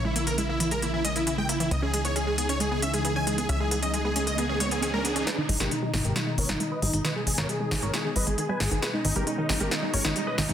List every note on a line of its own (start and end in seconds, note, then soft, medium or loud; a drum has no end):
0.00 1.69 A#1 medium
0.00 5.23 C#3 medium
0.00 5.23 E3 medium
0.00 1.68 A#3 medium
0.00 1.68 E4 medium
0.05 0.15 G#3 medium
0.05 0.14 E4 medium
0.16 0.23 A#3 medium
0.16 0.25 E4 medium
0.16 closed hi-hat medium
0.27 0.34 E3 medium
0.27 0.36 A#4 medium
0.27 closed hi-hat medium
0.38 0.49 G#3 medium
0.38 0.48 E4 medium
0.38 closed hi-hat medium
0.49 0.56 A#3 medium
0.49 0.59 E4 medium
0.60 0.67 E3 medium
0.60 0.70 E4 medium
0.60 closed hi-hat medium
0.71 0.82 G#3 medium
0.71 0.81 A#4 medium
0.71 closed hi-hat medium
0.82 0.90 A#3 medium
0.82 0.92 E4 medium
0.82 closed hi-hat medium
0.94 1.01 E3 medium
0.94 1.03 E4 medium
1.05 1.15 G#3 medium
1.05 1.14 D#5 medium
1.05 closed hi-hat medium
1.16 1.23 A#3 medium
1.16 1.25 E4 medium
1.16 closed hi-hat medium
1.27 1.34 E3 medium
1.27 1.36 E4 medium
1.27 closed hi-hat medium
1.38 1.49 G#3 medium
1.38 1.48 G5 medium
1.49 1.56 A#3 medium
1.49 1.59 E4 medium
1.49 closed hi-hat medium
1.60 1.67 E3 medium
1.60 1.70 E4 medium
1.60 closed hi-hat medium
1.71 3.47 C#2 medium
1.71 5.23 G#3 medium
1.71 1.82 B3 medium
1.71 5.23 D#4 medium
1.71 1.81 D#5 medium
1.71 closed hi-hat medium
1.71 riser medium
1.82 1.89 C#4 medium
1.82 1.92 G#4 medium
1.94 2.01 G#3 medium
1.94 2.03 G#4 medium
1.94 closed hi-hat medium
2.05 2.15 B3 medium
2.05 2.14 C#5 medium
2.05 closed hi-hat medium
2.16 2.23 C#4 medium
2.16 2.25 G#4 medium
2.16 closed hi-hat medium
2.27 2.34 G#3 medium
2.27 2.36 G#4 medium
2.38 2.49 B3 medium
2.38 2.48 G#4 medium
2.38 closed hi-hat medium
2.49 2.56 C#4 medium
2.49 2.59 C#5 medium
2.49 closed hi-hat medium
2.60 2.67 G#3 medium
2.60 2.70 G#4 medium
2.60 closed hi-hat medium
2.71 2.82 B3 medium
2.71 2.81 G#4 medium
2.82 2.90 C#4 medium
2.82 2.92 E5 medium
2.82 closed hi-hat medium
2.94 3.01 G#3 medium
2.94 3.03 G#4 medium
2.94 closed hi-hat medium
3.05 3.15 B3 medium
3.05 3.14 G#4 medium
3.05 closed hi-hat medium
3.16 3.23 C#4 medium
3.16 3.25 G#5 medium
3.27 3.34 G#3 medium
3.27 3.36 G#4 medium
3.27 closed hi-hat medium
3.38 3.49 B3 medium
3.38 3.48 G#4 medium
3.38 closed hi-hat medium
3.49 5.25 C#2 medium
3.49 3.56 C#4 medium
3.49 3.59 E5 loud
3.49 closed hi-hat medium
3.60 3.67 G#3 medium
3.60 3.70 G#4 medium
3.71 3.82 B3 medium
3.71 3.81 G#4 medium
3.71 closed hi-hat medium
3.83 3.90 C#4 medium
3.83 3.92 D#5 medium
3.83 closed hi-hat medium
3.94 4.01 G#3 medium
3.94 4.03 G#4 medium
3.94 closed hi-hat medium
4.05 4.15 B3 medium
4.05 4.14 G#4 medium
4.16 4.23 C#4 medium
4.16 4.25 G#4 medium
4.16 closed hi-hat medium
4.27 4.34 G#3 medium
4.27 4.36 D#5 medium
4.27 closed hi-hat medium
4.38 4.49 B3 medium
4.38 4.48 G#4 medium
4.38 closed hi-hat medium
4.49 4.56 C#4 medium
4.49 4.59 G#4 medium
4.60 4.67 G#3 medium
4.60 4.70 C#5 medium
4.60 closed hi-hat medium
4.71 4.82 B3 medium
4.71 4.81 G#4 medium
4.71 closed hi-hat medium
4.82 4.90 C#4 medium
4.82 4.92 G#4 medium
4.82 closed hi-hat medium
4.94 5.01 G#3 medium
4.94 5.03 A#4 medium
5.05 5.15 B3 medium
5.05 5.14 G#4 medium
5.05 closed hi-hat medium
5.16 5.23 C#4 medium
5.16 5.25 G#4 medium
5.16 closed hi-hat medium
5.27 10.53 B2 medium
5.27 10.53 D#3 medium
5.27 10.53 G#3 medium
5.27 5.34 G#3 medium
5.27 8.79 D#4 medium
5.27 5.36 G#4 medium
5.27 5.36 B4 loud
5.27 snare soft
5.27 closed hi-hat medium
5.38 5.45 D#3 medium
5.38 5.48 D#4 medium
5.49 5.57 G#1 medium
5.49 5.60 G3 medium
5.49 5.59 D#4 medium
5.49 open hi-hat medium
5.60 5.68 G#1 medium
5.60 5.67 G#3 medium
5.60 5.70 G4 medium
5.60 5.70 A#4 medium
5.60 snare soft
5.60 closed hi-hat medium
5.71 5.78 D#3 medium
5.71 5.81 D#4 medium
5.71 closed hi-hat medium
5.82 5.93 G3 medium
5.82 5.92 D#4 medium
5.93 6.01 G#1 medium
5.93 6.01 G#3 medium
5.93 6.03 D#4 medium
5.93 snare soft
5.93 open hi-hat medium
6.05 6.13 G#1 medium
6.05 6.12 D#3 medium
6.05 6.14 G4 medium
6.05 6.14 A#4 medium
6.05 closed hi-hat medium
6.16 6.26 G3 medium
6.16 6.25 D#4 medium
6.16 snare soft
6.16 closed hi-hat medium
6.27 6.34 G#3 medium
6.27 6.37 D#4 medium
6.38 6.46 G#1 medium
6.38 6.45 D#3 medium
6.38 6.48 A#4 medium
6.38 6.48 C#5 medium
6.38 open hi-hat loud
6.49 6.57 G#1 medium
6.49 6.60 G3 medium
6.49 6.59 D#4 medium
6.49 snare soft
6.49 closed hi-hat medium
6.60 6.67 G#3 medium
6.60 6.70 D#4 medium
6.60 closed hi-hat medium
6.71 6.78 D#3 medium
6.71 6.81 B4 medium
6.71 6.81 D#5 medium
6.82 6.90 G#1 medium
6.82 6.93 G3 medium
6.82 6.92 D#4 medium
6.82 open hi-hat medium
6.93 7.01 G#1 medium
6.93 7.01 G#3 medium
6.93 7.03 D#4 medium
6.93 closed hi-hat medium
7.05 7.12 D#3 medium
7.05 7.14 B4 medium
7.05 7.14 D#5 loud
7.05 snare soft
7.05 closed hi-hat medium
7.16 7.26 G3 medium
7.16 7.25 G#4 medium
7.27 7.35 G#1 medium
7.27 7.34 G#3 medium
7.27 7.36 G#4 medium
7.27 open hi-hat loud
7.38 7.46 G#1 medium
7.38 7.45 D#3 medium
7.38 7.48 A#4 medium
7.38 7.48 C#5 medium
7.38 snare soft
7.38 closed hi-hat medium
7.49 7.60 G3 medium
7.49 7.59 G#4 medium
7.49 closed hi-hat medium
7.60 7.67 G#3 medium
7.60 7.70 G#4 medium
7.71 7.79 G#1 medium
7.71 7.78 D#3 medium
7.71 7.81 G#4 medium
7.71 snare medium
7.71 open hi-hat medium
7.82 7.90 G#1 medium
7.82 7.93 G3 medium
7.82 7.92 A#4 medium
7.82 7.92 C#5 medium
7.82 closed hi-hat medium
7.94 8.01 G#3 medium
7.94 8.03 G#4 medium
7.94 snare medium
7.94 closed hi-hat medium
8.05 8.12 D#3 medium
8.05 8.14 G#4 medium
8.16 8.24 G#1 medium
8.16 8.26 G3 medium
8.16 8.25 B4 medium
8.16 8.25 D#5 medium
8.16 open hi-hat loud
8.27 8.35 G#1 medium
8.27 8.34 G#3 medium
8.27 8.36 G#4 medium
8.27 closed hi-hat medium
8.38 8.45 D#3 medium
8.38 8.48 G#4 medium
8.38 closed hi-hat medium
8.49 8.60 G3 medium
8.49 8.59 B4 medium
8.49 8.59 G#5 medium
8.60 8.68 G#1 medium
8.60 8.67 G#3 medium
8.60 8.70 G#4 medium
8.60 snare medium
8.60 open hi-hat medium
8.71 8.79 G#1 medium
8.71 8.78 D#3 medium
8.71 8.81 G#4 medium
8.71 closed hi-hat medium
8.82 8.93 G3 medium
8.82 10.53 C#4 medium
8.82 8.92 G#4 medium
8.82 8.92 B4 loud
8.82 snare medium
8.82 closed hi-hat medium
8.94 9.01 G#3 medium
8.94 9.03 D#4 medium
9.05 9.13 G#1 medium
9.05 9.12 D#3 medium
9.05 9.14 D#4 medium
9.05 open hi-hat loud
9.16 9.24 G#1 medium
9.16 9.26 G3 medium
9.16 9.25 G4 medium
9.16 9.25 A#4 medium
9.16 closed hi-hat medium
9.27 9.34 G#3 medium
9.27 9.36 D#4 medium
9.27 closed hi-hat medium
9.38 9.45 D#3 medium
9.38 9.48 D#4 medium
9.49 9.57 G#1 medium
9.49 9.60 G3 medium
9.49 9.59 D#4 medium
9.49 snare medium
9.49 open hi-hat loud
9.60 9.68 G#1 medium
9.60 9.67 G#3 medium
9.60 9.70 G4 medium
9.60 9.70 A#4 medium
9.60 closed hi-hat medium
9.71 9.78 D#3 medium
9.71 9.81 D#4 medium
9.71 snare medium
9.71 closed hi-hat medium
9.82 9.93 G3 medium
9.82 9.92 D#4 medium
9.94 10.01 G#1 medium
9.94 10.01 G#3 medium
9.94 10.03 A#4 medium
9.94 10.03 C#5 medium
9.94 open hi-hat loud
10.05 10.13 G#1 medium
10.05 10.12 D#3 medium
10.05 10.14 D#4 medium
10.05 snare medium
10.05 closed hi-hat medium
10.16 10.26 G3 medium
10.16 10.25 D#4 medium
10.16 closed hi-hat medium
10.27 10.34 G#3 medium
10.27 10.36 B4 medium
10.27 10.36 D#5 medium
10.38 10.46 G#1 medium
10.38 10.45 D#3 medium
10.38 10.47 D#4 medium
10.38 snare medium
10.38 open hi-hat medium
10.49 10.53 G#1 medium
10.49 10.53 G3 medium
10.49 10.53 D#4 medium
10.49 closed hi-hat medium